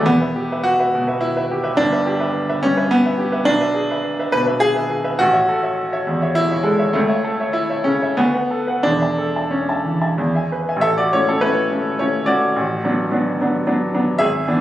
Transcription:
0.01 0.18 E2 medium
0.05 0.20 E1 medium
0.05 0.65 B3 loud
0.22 0.34 B4 medium
0.22 0.35 E5 medium
0.36 0.59 G4 medium
0.52 0.78 B4 medium
0.52 0.78 E5 medium
0.63 1.21 F#4 loud
0.80 0.93 B4 medium
0.80 0.93 E5 medium
0.95 1.17 B2 medium
1.08 1.33 B4 medium
1.08 1.33 E5 medium
1.21 1.77 E4 loud
1.37 1.49 B4 medium
1.37 1.49 E5 medium
1.51 1.73 G4 medium
1.64 1.76 B4 medium
1.64 1.76 E5 medium
1.77 1.91 G1 medium
1.77 2.63 D4 loud
1.92 2.05 B4 medium
1.92 2.05 E5 medium
2.07 2.30 G4 medium
2.20 2.46 B4 medium
2.20 2.47 E5 medium
2.49 2.62 B4 medium
2.49 2.62 E5 medium
2.63 2.86 G2 medium
2.63 2.91 C#4 loud
2.77 3.03 B4 medium
2.77 3.03 E5 medium
2.91 3.19 B3 loud
3.05 3.18 B4 medium
3.05 3.19 E5 medium
3.18 3.41 G4 medium
3.32 3.45 B4 medium
3.32 3.46 E5 medium
3.45 3.60 B1 medium
3.45 4.32 D4 loud
3.61 3.74 B4 medium
3.61 3.74 E5 medium
3.74 3.98 G#4 medium
3.91 4.16 B4 medium
3.91 4.17 E5 medium
4.19 4.31 B4 medium
4.19 4.33 E5 medium
4.32 4.57 B2 medium
4.32 4.45 B4 loud
4.47 4.74 B4 medium
4.47 4.74 E5 medium
4.60 4.89 G#4 loud
4.76 4.90 B4 medium
4.76 4.90 E5 medium
4.90 5.15 G#4 medium
5.04 5.19 B4 medium
5.04 5.19 E5 medium
5.19 5.35 A1 medium
5.19 6.36 F#4 loud
5.33 5.47 C#5 medium
5.33 5.47 E5 medium
5.49 5.73 A4 medium
5.63 5.90 C#5 medium
5.63 5.90 E5 medium
5.93 6.06 C#5 medium
5.93 6.06 E5 medium
6.07 6.31 E2 medium
6.22 6.49 C#5 medium
6.22 6.49 E5 medium
6.35 6.66 E4 loud
6.51 6.65 C#5 medium
6.51 6.65 E5 medium
6.63 6.94 G#3 medium
6.63 6.89 A4 medium
6.79 6.93 C#5 medium
6.79 6.93 E5 medium
6.93 7.09 C#2 medium
6.93 7.55 A3 medium
7.09 7.23 C#5 medium
7.09 7.23 E5 medium
7.24 7.49 A4 medium
7.40 7.68 C#5 medium
7.40 7.68 E5 medium
7.53 7.86 E4 medium
7.70 7.84 C#5 soft
7.70 7.85 E5 medium
7.84 8.11 C#3 soft
7.84 8.17 C#4 medium
8.02 8.17 C#5 soft
8.02 8.17 E5 medium
8.17 8.34 D2 medium
8.17 8.84 B3 medium
8.34 8.49 B4 soft
8.34 8.49 F#5 medium
8.51 8.78 A4 medium
8.67 8.83 B4 soft
8.67 8.83 F#5 medium
8.83 9.01 E1 medium
8.83 9.01 E2 medium
8.83 9.52 D4 loud
9.01 9.17 E5 soft
9.01 9.18 A5 soft
9.18 9.46 A4 medium
9.36 9.66 E5 soft
9.36 9.66 A5 soft
9.51 10.50 C#4 medium
9.69 9.84 E5 soft
9.69 9.84 A5 soft
9.84 10.11 E3 soft
10.01 10.16 E5 soft
10.01 10.16 A5 soft
10.18 10.34 E2 medium
10.35 10.50 E5 soft
10.35 10.50 G#5 soft
10.52 10.77 B4 soft
10.69 10.80 E5 soft
10.69 10.82 G#5 soft
10.76 11.08 A1 medium
10.81 10.96 A4 medium
10.81 10.97 E5 loud
10.98 11.12 F#4 medium
10.98 11.12 D5 medium
11.13 11.39 A3 soft
11.13 11.28 C#4 medium
11.13 11.27 E4 medium
11.13 11.27 C#5 medium
11.29 11.42 C#4 medium
11.29 11.42 A4 medium
11.41 11.68 A3 medium
11.41 11.69 C#4 medium
11.41 11.96 E4 medium
11.41 11.99 B4 loud
11.72 11.97 A3 soft
11.72 11.97 C#4 medium
11.99 12.25 A3 soft
11.99 12.25 C#4 medium
11.99 12.26 E4 medium
11.99 12.27 C#5 medium
12.26 12.52 A3 soft
12.26 12.52 C#4 soft
12.26 14.16 F#4 medium
12.26 14.19 D5 medium
12.56 12.83 A1 medium
12.84 13.09 F#3 soft
12.84 13.10 B3 medium
12.84 13.10 D4 medium
13.11 13.37 F#3 medium
13.11 13.37 B3 soft
13.11 13.37 D4 medium
13.40 13.64 F#3 soft
13.40 13.65 B3 medium
13.40 13.65 D4 medium
13.67 13.91 F#3 medium
13.67 13.90 B3 medium
13.67 13.91 D4 medium
13.94 14.18 F#3 medium
13.94 14.18 B3 medium
13.94 14.18 D4 medium
14.19 14.46 G#1 medium
14.19 14.61 G#4 medium
14.19 14.61 E5 loud
14.47 14.61 E3 medium
14.47 14.61 B3 medium
14.47 14.61 D4 medium

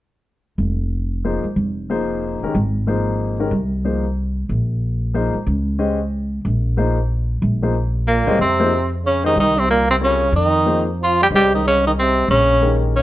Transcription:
0.58 1.40 F1 medium
1.25 1.43 F3 medium
1.25 1.43 A#3 soft
1.25 1.43 D#4 soft
1.25 1.43 G#4 soft
1.25 1.43 C5 medium
1.44 muted upright bass stroke soft
1.56 2.38 F1 medium
1.90 2.39 F3 medium
1.90 2.39 A#3 soft
1.90 2.39 D#4 soft
1.90 2.39 G#4 soft
1.90 2.39 C5 medium
2.42 2.53 D#3 medium
2.42 2.54 G#3 soft
2.42 2.54 C#4 soft
2.42 2.54 G4 medium
2.42 2.54 A#4 medium
2.42 muted upright bass stroke soft
2.55 3.48 G#1 medium
2.87 3.36 F3 soft
2.87 3.36 A#3 soft
2.87 3.36 D#4 soft
2.87 3.36 G#4 soft
2.87 3.36 C5 medium
3.39 3.50 D#3 soft
3.39 3.51 G#3 soft
3.39 3.51 C#4 soft
3.39 3.51 G4 soft
3.39 3.51 A#4 medium
3.51 4.45 C2 medium
3.85 4.03 F3 soft
3.85 4.03 A#3 soft
3.85 4.03 D#4 soft
3.85 4.03 G#4 soft
3.85 4.03 C5 soft
4.49 5.31 A#1 medium
5.14 5.33 F3 medium
5.14 5.33 A#3 soft
5.14 5.33 D#4 soft
5.14 5.33 G#4 medium
5.14 5.33 C5 medium
5.35 muted upright bass stroke soft
5.47 6.40 C#2 medium
5.79 5.98 G#3 medium
5.79 5.98 C#4 soft
5.79 5.98 G4 medium
5.79 5.98 C5 soft
5.79 5.98 D#5 medium
6.45 7.38 A#1 medium
6.77 6.96 F3 medium
6.77 6.96 A#3 soft
6.77 6.96 D#4 soft
6.77 6.96 G#4 soft
6.77 6.96 C5 medium
7.42 8.23 A#1 medium
7.62 7.73 F3 soft
7.62 7.73 A#3 soft
7.62 7.73 D#4 soft
7.62 7.73 G#4 soft
7.62 7.74 C5 medium
8.06 8.37 A#2 medium
8.06 8.37 A#3 medium
8.27 8.38 C2 medium
8.27 8.38 G#3 medium
8.27 8.38 C#4 medium
8.27 8.38 G4 medium
8.27 8.38 C5 medium
8.27 8.38 D#5 medium
8.39 9.33 F2 medium
8.39 8.89 C3 medium
8.39 8.90 C4 medium
8.59 8.70 F3 medium
8.59 8.70 A#3 medium
8.59 8.71 D#4 medium
8.59 8.71 G#4 medium
8.59 8.71 C5 medium
9.04 9.23 C#3 medium
9.04 9.25 C#4 medium
9.24 9.37 D#3 medium
9.24 9.35 G#3 medium
9.24 9.35 C#4 soft
9.24 9.37 D#4 medium
9.24 9.35 G4 medium
9.24 9.35 C5 medium
9.24 9.35 D#5 medium
9.36 10.30 C2 medium
9.36 9.60 D#3 medium
9.36 9.60 D#4 medium
9.59 9.68 C3 medium
9.59 9.70 C4 medium
9.69 9.88 A#2 medium
9.69 9.89 A#3 medium
9.90 9.95 C3 medium
9.90 9.96 C4 medium
10.01 10.33 C#3 medium
10.01 10.20 G3 soft
10.01 10.20 C4 soft
10.01 10.33 C#4 medium
10.01 10.20 F4 soft
10.01 10.20 A#4 soft
10.01 10.20 C#5 medium
10.32 11.27 F2 medium
10.32 10.85 D#3 medium
10.32 10.84 D#4 medium
10.66 10.85 F3 soft
10.66 10.85 A#3 soft
10.66 10.85 D#4 soft
10.66 10.85 G#4 soft
10.66 10.85 C5 medium
11.01 11.19 F3 medium
11.01 11.21 F4 medium
11.22 11.27 G3 medium
11.22 11.28 G4 medium
11.31 12.24 C2 medium
11.31 11.52 G3 medium
11.31 12.22 G#3 soft
11.31 12.22 C#4 soft
11.31 12.22 G4 soft
11.31 12.22 C5 soft
11.31 12.22 D#5 medium
11.36 11.53 G4 medium
11.54 11.64 D#3 medium
11.54 11.65 D#4 medium
11.66 11.84 C#3 medium
11.66 11.85 C#4 medium
11.87 11.92 D#3 medium
11.87 11.92 D#4 medium
11.99 12.28 C3 medium
11.99 12.28 C4 medium
12.28 13.02 A#1 medium
12.28 12.79 C#3 medium
12.28 12.79 C#4 medium
12.61 13.02 D#3 soft
12.61 13.02 G#3 soft
12.61 13.02 C#4 soft
12.61 13.02 G4 soft
12.61 13.02 A#4 soft
12.96 13.02 C#3 medium
12.96 13.02 C#4 medium

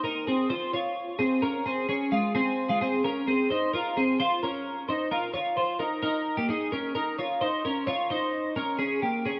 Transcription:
0.04 0.28 D#4 medium
0.04 0.27 A#4 medium
0.27 0.51 C4 medium
0.27 0.50 G#4 medium
0.50 0.73 F4 medium
0.50 0.73 C5 medium
0.73 1.17 F4 medium
0.73 1.17 C#5 medium
1.19 1.43 C4 soft
1.19 1.42 G#4 medium
1.42 1.66 C#4 medium
1.42 1.66 A#4 medium
1.66 1.89 C4 medium
1.66 1.87 G#4 medium
1.89 2.12 C#4 medium
1.89 2.11 G#4 medium
2.12 2.35 G#3 medium
2.12 2.34 F4 medium
2.35 2.68 C4 medium
2.35 2.67 G#4 medium
2.69 2.81 G#3 medium
2.69 2.81 F4 medium
2.81 3.05 C4 medium
2.81 3.04 G#4 medium
3.04 3.28 C#4 medium
3.04 3.27 A#4 medium
3.27 3.51 C4 medium
3.27 3.50 G#4 medium
3.50 3.74 D#4 medium
3.50 3.73 C5 medium
3.73 3.97 F4 medium
3.73 3.96 A#4 medium
3.97 4.20 C4 medium
3.97 4.20 G#4 medium
4.20 4.43 F4 medium
4.20 4.43 C5 loud
4.43 4.86 C#4 medium
4.43 4.86 A#4 medium
4.89 5.12 D#4 medium
4.89 5.11 C5 medium
5.11 5.34 F4 medium
5.11 5.33 A#4 medium
5.34 5.56 F4 medium
5.34 5.56 C#5 medium
5.57 5.80 F4 medium
5.57 5.79 C5 medium
5.79 6.02 D#4 medium
5.79 6.01 A#4 medium
6.03 6.36 D#4 medium
6.03 6.35 A#4 loud
6.37 6.50 A#3 medium
6.37 6.48 G4 medium
6.49 6.73 D#4 medium
6.49 6.72 G#4 medium
6.72 6.96 C#4 medium
6.72 6.94 A#4 medium
6.95 7.19 D#4 medium
6.95 7.18 A#4 medium
7.19 7.42 F4 medium
7.19 7.41 C#5 medium
7.41 7.65 D#4 medium
7.41 7.64 C5 medium
7.65 7.88 C#4 medium
7.65 7.87 A#4 medium
7.87 8.11 F4 medium
7.87 8.10 C#5 loud
8.10 8.54 D#4 medium
8.10 8.53 C5 medium
8.56 8.78 C#4 medium
8.56 8.79 A#4 medium
8.79 9.02 C#4 medium
8.79 9.02 G#4 medium
9.02 9.26 A#3 medium
9.02 9.25 G4 medium
9.26 9.40 C#4 medium
9.26 9.40 G#4 medium

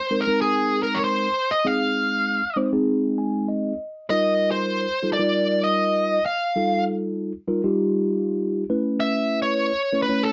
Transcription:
0.00 0.23 C5 medium
0.11 0.24 G#3 medium
0.11 0.24 C4 medium
0.11 0.24 D#4 medium
0.11 0.25 A#4 medium
0.21 0.41 A#4 medium
0.27 1.27 G#3 medium
0.27 1.27 C4 medium
0.27 1.27 D#4 medium
0.27 1.27 A#4 medium
0.41 0.83 G#4 medium
0.83 0.97 A#4 medium
0.95 1.02 C#5 medium
1.04 1.52 C5 medium
1.51 1.67 D#5 medium
1.65 2.41 G#3 medium
1.65 2.41 C4 medium
1.65 2.41 D#4 medium
1.65 2.41 G#4 medium
1.65 2.58 F5 medium
2.56 2.70 G#3 medium
2.56 2.70 C4 medium
2.56 2.70 D#4 medium
2.56 2.70 C5 medium
2.72 3.72 G#3 medium
2.72 3.72 C4 medium
2.72 3.72 D#4 medium
2.72 3.72 G#4 medium
3.18 3.47 G#5 medium
3.48 4.06 D#5 medium
4.10 4.86 G3 medium
4.10 4.86 D#4 medium
4.10 4.86 F4 medium
4.10 4.86 A#4 medium
4.10 4.48 D#5 medium
4.51 5.09 C5 medium
5.02 5.16 G3 medium
5.02 5.16 D#4 medium
5.02 5.16 F4 medium
5.02 5.16 A4 medium
5.13 5.66 D5 medium
5.19 6.18 G3 medium
5.19 6.18 D#4 medium
5.19 6.18 F4 medium
5.19 6.18 A#4 medium
5.64 6.25 D#5 medium
6.26 6.83 F5 medium
6.56 7.31 G3 medium
6.56 7.32 D#4 medium
6.56 7.32 F4 medium
6.56 7.32 A4 medium
7.48 7.61 G3 medium
7.48 7.61 D#4 medium
7.48 7.61 F4 medium
7.48 7.61 A#4 medium
7.64 8.63 G3 medium
7.64 8.63 D#4 medium
7.64 8.63 F4 medium
7.64 8.63 G4 medium
8.70 9.70 A3 medium
8.70 9.70 C#4 medium
8.70 9.70 E4 medium
8.70 9.70 B4 medium
9.00 9.38 E5 medium
9.42 10.02 C#5 medium
9.92 10.06 A3 medium
9.92 10.06 C#4 medium
9.92 10.06 E4 medium
9.92 10.06 B4 medium
10.02 10.24 B4 medium
10.09 10.32 A3 medium
10.09 10.32 C#4 medium
10.09 10.32 E4 medium
10.09 10.32 C#5 medium
10.23 10.32 A4 medium

